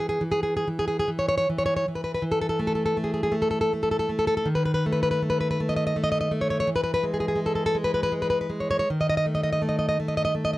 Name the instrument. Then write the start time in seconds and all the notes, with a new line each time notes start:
nylon-string guitar
Already playing: E3
0.09 G#4
0.21 E3
0.32 G#4
0.43 G#4
0.57 G#4
0.68 E3
0.79 G#4
0.88 G#4
0.99 G#4
1.08 E3
1.19 C#5
1.29 C#5
1.38 C#5
1.50 E3
1.58 C#5
1.66 C#5
1.77 C#5
1.88 E3
1.95 B4
2.04 B4
2.14 B4
2.22 E3
2.32 A4
2.42 A4
2.49 A4
2.59 A3
2.67 A4
2.75 A4
2.86 A4
2.97 A3
3.04 G#4
3.14 G#4
3.23 G#4
3.32 A3
3.42 A4
3.51 A4
3.61 A4
3.73 A3
3.83 A4
3.91 A4
3.99 A4
4.09 A3
4.19 A4
4.27 A4
4.37 A4
4.46 D#3
4.55 B4
4.66 B4
4.74 B4
4.86 A3
4.92 B4
5.03 B4
5.11 B4
5.22 A3
5.30 B4
5.41 B4
5.51 B4
5.60 A3
5.69 D#5
5.76 D#5
5.87 D#5
5.96 A3
6.04 D#5
6.12 D#5
6.21 D#5
6.31 A3
6.41 C#5
6.50 C#5
6.60 C#5
6.67 E3
6.76 B4
6.84 B4
6.94 B4
7.03 G#3
7.14 G#4
7.20 G#4
7.28 G#4
7.36 G#3
7.46 A4
7.55 A4
7.66 A4
7.75 G#3
7.84 B4
7.94 B4
8.03 B4
8.12 G#3
8.22 B4
8.30 B4
8.41 B4
8.50 G#3
8.60 C#5
8.71 C#5
8.79 C#5
8.90 D#3
9.01 D#5
9.09 D#5
9.17 D#5
9.26 A3
9.35 D#5
9.43 D#5
9.53 D#5
9.62 A3
9.69 D#5
9.79 D#5
9.89 D#5
10.00 A3
10.08 D#5
10.17 D#5
10.25 D#5
10.35 A3
10.45 D#5
10.53 D#5